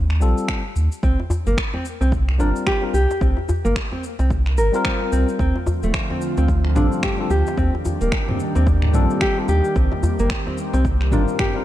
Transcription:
Already playing: sub bass D#2
0.10 finger snap
0.20 sub bass A#1, tine electric piano G3 C4 F4 A4, shaker
0.38 shaker
0.48 finger snap, kick, shaker
0.76 sub bass D#2, shaker
0.92 shaker
1.03 sub bass C2, nylon-string guitar C4, kick, shaker
1.20 djembe slap, djembe tone
1.30 djembe tone, djembe bass, shaker
1.46 sub bass G1, nylon-string guitar A#3, shaker
1.58 finger snap, kick, shaker
1.74 nylon-string guitar C4, djembe tone
1.85 shaker
2.01 sub bass C2, nylon-string guitar C4, djembe slap, shaker
2.12 kick, shaker
2.29 finger snap, djembe tone
2.38 sub bass G1, tine electric piano G3 C4 F4 A#4, nylon-string guitar D4, djembe slap, shaker
2.56 shaker
2.67 nylon-string guitar G4, finger snap, kick, shaker
2.81 tine electric piano G3 C4 F4 A#4
2.94 sub bass C2, nylon-string guitar G4, shaker
3.11 djembe slap, shaker
3.21 sub bass C2, nylon-string guitar C4, kick, shaker
3.37 djembe slap, djembe tone
3.49 djembe tone, djembe bass, shaker
3.65 sub bass G1, nylon-string guitar A#3, djembe slap, shaker
3.76 finger snap, kick, shaker
3.92 nylon-string guitar C4, djembe tone
4.04 shaker
4.19 sub bass C2, nylon-string guitar C4, djembe slap, shaker
4.30 kick, shaker
4.46 finger snap
4.57 sub bass G1, nylon-string guitar A#4, shaker
4.72 tine electric piano G3 C4 F4 A#4, shaker
4.85 nylon-string guitar C4, finger snap, kick, shaker
5.12 sub bass C2, nylon-string guitar C4, shaker
5.29 shaker
5.39 sub bass D2, analog synth pad D3 F3 A3 C4 F4, nylon-string guitar C4, kick, shaker
5.55 djembe slap, djembe tone
5.66 djembe tone, djembe bass, shaker
5.83 sub bass D1, nylon-string guitar A3, shaker
5.94 finger snap, kick, shaker
6.10 nylon-string guitar C4, djembe tone
6.21 shaker
6.37 sub bass D2, nylon-string guitar C4, djembe slap, shaker
6.48 kick, shaker
6.65 finger snap, djembe tone
6.75 sub bass A1, tine electric piano G3 C4 F4 A4, nylon-string guitar D4, mid tom, djembe slap, shaker
6.92 shaker
7.03 nylon-string guitar G4, finger snap, kick, mid tom, shaker
7.18 tine electric piano G3 C4 F4 A4
7.30 sub bass D2, nylon-string guitar G4, shaker
7.47 djembe slap, shaker
7.58 sub bass D#2, analog synth pad D#3 G3 A#3 D4 G4, nylon-string guitar C4, kick, shaker
7.75 djembe slap, djembe tone
7.85 djembe tone, djembe bass, shaker
8.01 sub bass D#1, nylon-string guitar A#3, djembe slap, shaker
8.12 finger snap, kick, shaker
8.28 nylon-string guitar C4, mid tom, djembe tone
8.40 shaker
8.55 sub bass D#2, nylon-string guitar C4, djembe slap, shaker
8.67 kick, shaker
8.82 finger snap, mid tom
8.93 sub bass A#1, tine electric piano G3 C4 F4 A4, nylon-string guitar D4, mid tom, shaker
9.10 shaker
9.21 nylon-string guitar G4, finger snap, kick, shaker
9.36 tine electric piano G3 C4 F4 A4
9.48 sub bass D#2, nylon-string guitar G4, shaker
9.65 shaker
9.76 sub bass C2, nylon-string guitar C4, analog synth pad C4, kick, shaker
9.92 djembe slap, djembe tone
10.03 djembe tone, djembe bass, shaker
10.19 sub bass G1, nylon-string guitar A#3, shaker
10.30 finger snap, kick, shaker
10.47 nylon-string guitar C4, djembe tone
10.58 shaker
10.73 sub bass C2, nylon-string guitar C4, djembe slap, shaker
10.85 kick, shaker
11.01 finger snap, djembe tone
11.11 sub bass G1, tine electric piano G3 C4 F4 A#4, nylon-string guitar D4, mid tom, djembe slap, shaker
11.28 shaker
11.39 nylon-string guitar G4, finger snap, kick, mid tom, shaker
11.54 tine electric piano G3 C4 F4 A#4

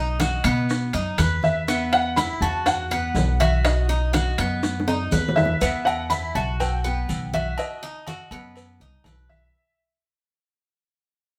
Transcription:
Already playing: upright bass B1, cuban tres D#4, felt piano D#5
0.20 cuban tres F#4, high bongo, high conga, high timbale, maracas
0.44 upright bass B2, cuban tres B3, high bongo, high conga, high timbale, maracas
0.68 high bongo, high conga, maracas
0.93 upright bass F#2, cuban tres D#4, high bongo, high conga, high timbale, maracas
1.18 upright bass E2, cuban tres B4, high bongo, low bongo, high conga, high timbale, maracas
1.43 felt piano E5, high conga, maracas
1.68 cuban tres B3, high bongo, high conga, maracas
1.92 felt piano F#5, high bongo, high conga, high timbale, maracas
2.16 cuban tres E4, felt piano B5, high bongo, high conga, high timbale, maracas
2.41 upright bass E2, cuban tres F#4, felt piano A5, high bongo, high conga, maracas
2.66 felt piano F#5, high bongo, high conga, low conga, high timbale, maracas
2.91 cuban tres B3, high bongo, high conga, low conga, high timbale, maracas
3.15 upright bass B1, high bongo, low bongo, high conga, low timbale, maracas
3.40 cuban tres F#4, felt piano E5, high conga, high timbale, maracas
3.65 felt piano D#5, high bongo, high conga, high timbale, maracas
3.89 cuban tres D#4, high bongo, high conga, maracas
4.13 cuban tres F#4, high bongo, high conga, high timbale, maracas
4.38 upright bass F#2, cuban tres B3, high bongo, high conga, high timbale, maracas
4.63 high bongo, high conga, maracas
4.80 high bongo
4.88 cuban tres D#4, high conga, high timbale, maracas
5.11 upright bass E2, cuban tres B4, low bongo, high conga, high timbale, maracas
5.29 low bongo
5.36 felt piano E5, high conga, low timbale, maracas
5.45 low bongo
5.61 upright bass E2, cuban tres B3, cowbell, low agogo, maracas
5.85 felt piano F#5, high conga, low agogo, maracas
6.10 cuban tres E4, felt piano B5, cowbell, high conga, maracas
6.35 upright bass B1, cuban tres F#4, felt piano A5, high conga, maracas
6.60 felt piano G5, cowbell, high conga, low conga, low agogo, maracas
6.84 cuban tres B3, high conga, low conga, maracas
7.09 upright bass B1, cowbell, high conga, low agogo, maracas
7.33 cuban tres F#4, felt piano E5, cowbell, high conga, maracas
7.58 felt piano D#5, cowbell, high conga, low agogo, maracas
7.83 cuban tres D#4, high conga, maracas
8.07 cuban tres F#4, cowbell, high conga, low agogo, maracas
8.31 upright bass F#2, cuban tres B3, high conga, low agogo, maracas
8.56 cowbell, high conga, low agogo, maracas
8.80 upright bass C2, cuban tres D#4, high conga, maracas
9.04 upright bass B1, cuban tres B4, cowbell, high conga, low timbale, low agogo, maracas
9.29 felt piano E5, high conga, maracas

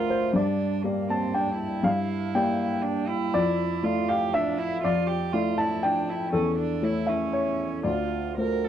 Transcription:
Already playing: upright piano D2 A3 F4 A#4 C5 D5 E5, cello F4
0.10 upright piano C5
0.33 upright piano G2 D5, cello D4
0.84 upright piano A#3 G4 D5, cello A#3
1.09 cello C4, upright piano A5
1.34 cello D4, upright piano G5
1.59 cello E4
1.83 upright piano G2 F5
2.35 upright piano A#3 G4 D5 G5
2.82 cello D4
3.08 cello E4
3.34 upright piano F2 D5
3.83 upright piano A3 E4 D5, cello F4
4.09 cello G4, upright piano F5
4.33 cello D4, upright piano E5
4.58 cello E4
4.83 upright piano F2 D5, cello F4
5.07 cello G4
5.33 upright piano A3 E4 D5, cello F4
5.58 cello E4, upright piano A5
5.83 cello D4, upright piano G5
6.09 cello E4
6.33 upright piano E2 A4, cello C#4
6.58 cello D4
6.82 upright piano A3 E4 C#5, cello E4
7.07 cello C#4, upright piano E5
7.33 upright piano C#5
7.83 upright piano D2 D5, cello F4
8.38 upright piano A3 F4 C5, cello A#4
8.64 cello A4

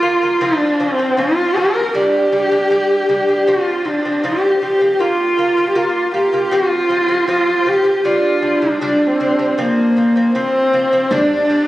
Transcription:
Already playing: horsehead fiddle F4
0.02 lute A#3 F4
0.22 lute A#3 F4
0.41 lute F3 C4, horsehead fiddle D4
0.80 lute F3 C4, horsehead fiddle C4
0.98 lute F3 C4
1.17 lute F3 C4, horsehead fiddle F4
1.56 lute F3 C4, horsehead fiddle A#4
1.74 lute F3 C4
1.94 lute G3 D4, horsehead fiddle G4
2.32 lute G3 D4
2.51 lute G3 D4
2.70 lute G3 D4
3.09 lute G3 D4
3.28 lute G3 D4
3.47 lute F3 C4, horsehead fiddle F4
3.85 lute F3 C4, horsehead fiddle D4
4.05 lute F3 C4
4.24 lute F3 C4, horsehead fiddle G4
4.62 lute F3 C4, horsehead fiddle G4
4.81 lute F3 C4
4.99 lute A#3 F4, horsehead fiddle F4
5.38 lute A#3 F4
5.57 lute A#3 F4
5.69 horsehead fiddle G4
5.75 lute A#3 F4, horsehead fiddle F4
6.14 lute A#3 F4, horsehead fiddle G4
6.33 lute A#3 F4
6.51 lute F3 C4, horsehead fiddle F4
6.89 lute F3 C4
7.08 lute F3 C4
7.27 lute F3 C4, horsehead fiddle F4
7.66 lute F3 C4, horsehead fiddle G4
7.84 lute F3 C4
8.05 lute G3 D4, horsehead fiddle F4
8.42 lute G3 D4
8.56 horsehead fiddle D4
8.62 lute G3 D4
8.81 lute G3 D4
9.07 horsehead fiddle C4
9.20 lute G3 D4
9.39 lute G3 D4
9.51 horsehead fiddle C4
9.58 lute F3 C4, horsehead fiddle A#3
9.97 lute F3 C4
10.16 lute F3 C4
10.34 lute F3 C4, horsehead fiddle C4
10.73 lute F3 C4
10.92 lute F3 C4
11.11 lute G3 D4, horsehead fiddle D4, frame drum
11.50 lute G3 D4

